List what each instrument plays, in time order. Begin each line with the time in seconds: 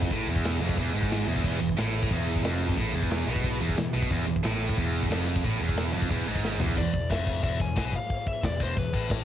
Already playing: distorted electric guitar F2, string section E3 B3 E4 G#4
0.03 kick
0.10 picked electric bass A1, distorted electric guitar A2, kick, china
0.27 picked electric bass E1, distorted electric guitar E2
0.36 kick
0.45 snare, china
0.60 picked electric bass F1, distorted electric guitar F2
0.69 kick
0.77 picked electric bass E1, distorted electric guitar E2, kick, china
0.94 picked electric bass G#1, distorted electric guitar G#2
1.03 kick
1.11 snare, china
1.28 picked electric bass E1, distorted electric guitar E2
1.36 kick
1.44 picked electric bass E1, distorted electric guitar E2, kick, crash, china
1.61 picked electric bass E1, distorted electric guitar E2
1.69 kick
1.77 picked electric bass A1, distorted electric guitar A2, snare, china
2.03 kick
2.10 picked electric bass E1, distorted electric guitar E2, kick, china
2.36 kick
2.44 picked electric bass F1, distorted electric guitar F2, snare, china
2.69 kick
2.77 picked electric bass A1, distorted electric guitar A2, kick, china
2.93 picked electric bass E1, distorted electric guitar E2
3.03 kick
3.11 snare, china
3.26 picked electric bass B1, distorted electric guitar B2
3.36 kick
3.44 kick, china
3.61 picked electric bass E1, distorted electric guitar E2
3.69 kick
3.77 picked electric bass E1, distorted electric guitar E2, snare, china
3.93 picked electric bass B1, distorted electric guitar B2
4.02 kick
4.10 picked electric bass E1, distorted electric guitar E2, kick, china
4.27 picked electric bass E1, distorted electric guitar E2
4.36 kick
4.43 picked electric bass A1, distorted electric guitar A2, snare, china
4.69 kick
4.76 picked electric bass E1, distorted electric guitar E2, kick, china
5.03 kick
5.09 picked electric bass F1, distorted electric guitar F2, snare, china
5.36 kick
5.43 picked electric bass A1, distorted electric guitar A2, kick, china
5.59 picked electric bass E1, distorted electric guitar E2
5.69 kick
5.77 snare, china
5.93 picked electric bass F1, distorted electric guitar F2
6.02 kick
6.10 picked electric bass E1, distorted electric guitar E2, kick, china
6.26 picked electric bass G#1, distorted electric guitar G#2
6.35 kick
6.45 snare
6.58 picked electric bass E1, distorted electric guitar E2, floor tom
6.76 picked electric bass E1, distorted electric guitar E2, string section E3 B3 G#4, lead electric guitar D5, kick, crash
6.93 picked electric bass E1, distorted electric guitar E2, kick, crash
7.10 picked electric bass F1, distorted electric guitar F2, lead electric guitar E5, kick, snare, crash
7.27 kick, crash
7.43 picked electric bass E1, distorted electric guitar E2, lead electric guitar E5, kick, crash
7.60 picked electric bass E1, distorted electric guitar E2, lead electric guitar G#5, kick, crash
7.76 picked electric bass B1, distorted electric guitar B2, lead electric guitar G#5, kick, snare, crash
7.93 lead electric guitar F5, kick, crash
8.10 kick, crash
8.27 lead electric guitar E5, kick, crash
8.43 picked electric bass E1, distorted electric guitar E2, lead electric guitar D5, kick, snare, crash
8.60 picked electric bass E1, distorted electric guitar E2, lead electric guitar C5, kick, crash
8.76 picked electric bass E1, distorted electric guitar E2, lead electric guitar B4, kick, crash
8.93 picked electric bass A1, distorted electric guitar A2, kick, crash
9.10 kick, snare, crash